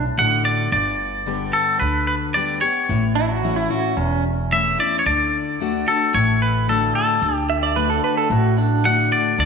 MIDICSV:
0, 0, Header, 1, 5, 480
1, 0, Start_track
1, 0, Key_signature, 2, "major"
1, 0, Tempo, 541516
1, 641, Time_signature, 4, 2, 24, 8
1, 8379, End_track
2, 0, Start_track
2, 0, Title_t, "Clean electric guitar"
2, 0, Program_c, 0, 27
2, 166, Note_on_c, 0, 78, 89
2, 396, Note_off_c, 0, 78, 0
2, 399, Note_on_c, 0, 74, 94
2, 631, Note_off_c, 0, 74, 0
2, 642, Note_on_c, 0, 74, 87
2, 1359, Note_on_c, 0, 69, 79
2, 1383, Note_off_c, 0, 74, 0
2, 1583, Note_off_c, 0, 69, 0
2, 1592, Note_on_c, 0, 71, 78
2, 1827, Note_off_c, 0, 71, 0
2, 1838, Note_on_c, 0, 71, 75
2, 1903, Note_off_c, 0, 71, 0
2, 2077, Note_on_c, 0, 74, 81
2, 2311, Note_off_c, 0, 74, 0
2, 2314, Note_on_c, 0, 73, 82
2, 2764, Note_off_c, 0, 73, 0
2, 4011, Note_on_c, 0, 76, 89
2, 4230, Note_off_c, 0, 76, 0
2, 4254, Note_on_c, 0, 74, 91
2, 4420, Note_off_c, 0, 74, 0
2, 4423, Note_on_c, 0, 73, 66
2, 4484, Note_off_c, 0, 73, 0
2, 4489, Note_on_c, 0, 74, 93
2, 5210, Note_on_c, 0, 69, 80
2, 5227, Note_off_c, 0, 74, 0
2, 5430, Note_off_c, 0, 69, 0
2, 5447, Note_on_c, 0, 73, 78
2, 5668, Note_off_c, 0, 73, 0
2, 5692, Note_on_c, 0, 71, 77
2, 5929, Note_off_c, 0, 71, 0
2, 5933, Note_on_c, 0, 69, 71
2, 6153, Note_off_c, 0, 69, 0
2, 6164, Note_on_c, 0, 69, 72
2, 6609, Note_off_c, 0, 69, 0
2, 7848, Note_on_c, 0, 78, 94
2, 8068, Note_off_c, 0, 78, 0
2, 8086, Note_on_c, 0, 74, 87
2, 8307, Note_off_c, 0, 74, 0
2, 8332, Note_on_c, 0, 74, 88
2, 8379, Note_off_c, 0, 74, 0
2, 8379, End_track
3, 0, Start_track
3, 0, Title_t, "Pedal steel guitar"
3, 0, Program_c, 1, 26
3, 2796, Note_on_c, 1, 64, 73
3, 2916, Note_off_c, 1, 64, 0
3, 2917, Note_on_c, 1, 66, 68
3, 3153, Note_off_c, 1, 66, 0
3, 3158, Note_on_c, 1, 64, 69
3, 3276, Note_off_c, 1, 64, 0
3, 3283, Note_on_c, 1, 66, 76
3, 3516, Note_off_c, 1, 66, 0
3, 3517, Note_on_c, 1, 61, 83
3, 3752, Note_off_c, 1, 61, 0
3, 6644, Note_on_c, 1, 76, 81
3, 6758, Note_off_c, 1, 76, 0
3, 6762, Note_on_c, 1, 74, 73
3, 6878, Note_off_c, 1, 74, 0
3, 6881, Note_on_c, 1, 71, 75
3, 6997, Note_off_c, 1, 71, 0
3, 7000, Note_on_c, 1, 69, 67
3, 7117, Note_off_c, 1, 69, 0
3, 7126, Note_on_c, 1, 71, 74
3, 7240, Note_off_c, 1, 71, 0
3, 7246, Note_on_c, 1, 69, 80
3, 7360, Note_off_c, 1, 69, 0
3, 7372, Note_on_c, 1, 66, 73
3, 7600, Note_off_c, 1, 66, 0
3, 7606, Note_on_c, 1, 62, 91
3, 7837, Note_off_c, 1, 62, 0
3, 8379, End_track
4, 0, Start_track
4, 0, Title_t, "Steel-string acoustic guitar"
4, 0, Program_c, 2, 25
4, 0, Note_on_c, 2, 45, 80
4, 158, Note_on_c, 2, 50, 58
4, 166, Note_on_c, 2, 57, 60
4, 170, Note_on_c, 2, 62, 59
4, 172, Note_on_c, 2, 66, 64
4, 593, Note_off_c, 2, 45, 0
4, 616, Note_off_c, 2, 50, 0
4, 620, Note_off_c, 2, 57, 0
4, 622, Note_off_c, 2, 62, 0
4, 623, Note_off_c, 2, 66, 0
4, 645, Note_on_c, 2, 43, 83
4, 1119, Note_on_c, 2, 50, 55
4, 1124, Note_on_c, 2, 55, 55
4, 1127, Note_on_c, 2, 59, 58
4, 1131, Note_on_c, 2, 67, 57
4, 1556, Note_off_c, 2, 43, 0
4, 1576, Note_off_c, 2, 50, 0
4, 1579, Note_off_c, 2, 55, 0
4, 1581, Note_off_c, 2, 59, 0
4, 1582, Note_off_c, 2, 67, 0
4, 1604, Note_on_c, 2, 50, 83
4, 2067, Note_off_c, 2, 50, 0
4, 2078, Note_on_c, 2, 50, 52
4, 2086, Note_on_c, 2, 55, 57
4, 2089, Note_on_c, 2, 59, 59
4, 2096, Note_on_c, 2, 67, 62
4, 2308, Note_off_c, 2, 67, 0
4, 2310, Note_off_c, 2, 50, 0
4, 2314, Note_off_c, 2, 55, 0
4, 2316, Note_off_c, 2, 59, 0
4, 2318, Note_on_c, 2, 67, 52
4, 2335, Note_on_c, 2, 59, 44
4, 2551, Note_off_c, 2, 67, 0
4, 2559, Note_off_c, 2, 59, 0
4, 2566, Note_on_c, 2, 45, 79
4, 3038, Note_on_c, 2, 52, 54
4, 3047, Note_on_c, 2, 57, 56
4, 3052, Note_on_c, 2, 61, 58
4, 3055, Note_on_c, 2, 64, 57
4, 3269, Note_off_c, 2, 64, 0
4, 3271, Note_off_c, 2, 52, 0
4, 3275, Note_off_c, 2, 57, 0
4, 3277, Note_off_c, 2, 61, 0
4, 3280, Note_on_c, 2, 64, 56
4, 3295, Note_on_c, 2, 61, 45
4, 3476, Note_off_c, 2, 45, 0
4, 3511, Note_off_c, 2, 64, 0
4, 3518, Note_on_c, 2, 40, 82
4, 3519, Note_off_c, 2, 61, 0
4, 4004, Note_on_c, 2, 52, 52
4, 4010, Note_on_c, 2, 57, 55
4, 4015, Note_on_c, 2, 61, 58
4, 4019, Note_on_c, 2, 64, 60
4, 4229, Note_off_c, 2, 64, 0
4, 4233, Note_off_c, 2, 52, 0
4, 4237, Note_off_c, 2, 57, 0
4, 4239, Note_off_c, 2, 61, 0
4, 4240, Note_on_c, 2, 64, 50
4, 4255, Note_on_c, 2, 61, 41
4, 4432, Note_off_c, 2, 40, 0
4, 4471, Note_off_c, 2, 64, 0
4, 4479, Note_off_c, 2, 61, 0
4, 4487, Note_on_c, 2, 50, 80
4, 4953, Note_off_c, 2, 50, 0
4, 4964, Note_on_c, 2, 50, 52
4, 4972, Note_on_c, 2, 57, 55
4, 4974, Note_on_c, 2, 62, 58
4, 4978, Note_on_c, 2, 66, 64
4, 5192, Note_off_c, 2, 66, 0
4, 5193, Note_off_c, 2, 50, 0
4, 5197, Note_off_c, 2, 57, 0
4, 5198, Note_off_c, 2, 62, 0
4, 5202, Note_on_c, 2, 66, 50
4, 5217, Note_on_c, 2, 62, 41
4, 5432, Note_off_c, 2, 66, 0
4, 5440, Note_off_c, 2, 62, 0
4, 5440, Note_on_c, 2, 45, 86
4, 5919, Note_on_c, 2, 50, 55
4, 5927, Note_on_c, 2, 57, 54
4, 5932, Note_on_c, 2, 62, 54
4, 5935, Note_on_c, 2, 66, 58
4, 6353, Note_off_c, 2, 45, 0
4, 6376, Note_off_c, 2, 50, 0
4, 6380, Note_off_c, 2, 57, 0
4, 6383, Note_off_c, 2, 62, 0
4, 6384, Note_off_c, 2, 66, 0
4, 6403, Note_on_c, 2, 50, 78
4, 6864, Note_off_c, 2, 50, 0
4, 6875, Note_on_c, 2, 50, 55
4, 6879, Note_on_c, 2, 57, 54
4, 6885, Note_on_c, 2, 62, 62
4, 6892, Note_on_c, 2, 66, 59
4, 7334, Note_off_c, 2, 50, 0
4, 7336, Note_off_c, 2, 57, 0
4, 7339, Note_off_c, 2, 62, 0
4, 7343, Note_off_c, 2, 66, 0
4, 7360, Note_on_c, 2, 45, 83
4, 7834, Note_on_c, 2, 50, 56
4, 7839, Note_on_c, 2, 57, 59
4, 7846, Note_on_c, 2, 62, 60
4, 7849, Note_on_c, 2, 66, 61
4, 8273, Note_off_c, 2, 45, 0
4, 8294, Note_off_c, 2, 50, 0
4, 8296, Note_off_c, 2, 57, 0
4, 8300, Note_off_c, 2, 62, 0
4, 8301, Note_off_c, 2, 66, 0
4, 8317, Note_on_c, 2, 50, 84
4, 8379, Note_off_c, 2, 50, 0
4, 8379, End_track
5, 0, Start_track
5, 0, Title_t, "Upright bass"
5, 0, Program_c, 3, 32
5, 159, Note_on_c, 3, 33, 73
5, 568, Note_off_c, 3, 33, 0
5, 639, Note_on_c, 3, 31, 84
5, 1317, Note_off_c, 3, 31, 0
5, 1606, Note_on_c, 3, 38, 75
5, 2282, Note_off_c, 3, 38, 0
5, 2564, Note_on_c, 3, 33, 80
5, 3241, Note_off_c, 3, 33, 0
5, 3520, Note_on_c, 3, 28, 74
5, 4198, Note_off_c, 3, 28, 0
5, 4482, Note_on_c, 3, 38, 83
5, 5159, Note_off_c, 3, 38, 0
5, 5445, Note_on_c, 3, 33, 76
5, 6121, Note_off_c, 3, 33, 0
5, 6397, Note_on_c, 3, 38, 83
5, 7076, Note_off_c, 3, 38, 0
5, 7357, Note_on_c, 3, 33, 83
5, 8036, Note_off_c, 3, 33, 0
5, 8317, Note_on_c, 3, 38, 78
5, 8379, Note_off_c, 3, 38, 0
5, 8379, End_track
0, 0, End_of_file